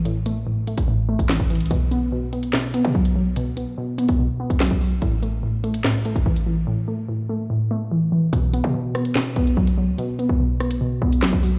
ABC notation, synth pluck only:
X:1
M:4/4
L:1/8
Q:1/4=145
K:Ador
V:1 name="Synth pluck" clef=bass
[A,,E,A,] A, A,, A, A,, A, E, E, | B,, B, B,, B, B,, B, F, F, | B,, B, B,, B, B,, B, F, F, | A,, A, A,, A, A,, A, E, E, |
A,, A, A,, A, A,, A, E, E, | B,, B, B,, B, B,, B, F, F, | B,, B, B,, B, B,, B, F, F, |]